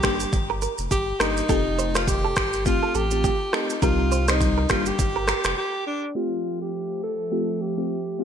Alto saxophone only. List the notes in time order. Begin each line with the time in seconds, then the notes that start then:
Already playing: G4
0.91 G4
1.21 D#4
1.96 F4
2.08 G4
2.66 F4
2.96 G4
3.54 D#4
3.83 F4
4.29 D#4
4.70 F4
4.88 G4
5.58 G4
5.87 D4
6.16 F4
6.62 G4
7.03 A4
7.62 G4
8.20 F4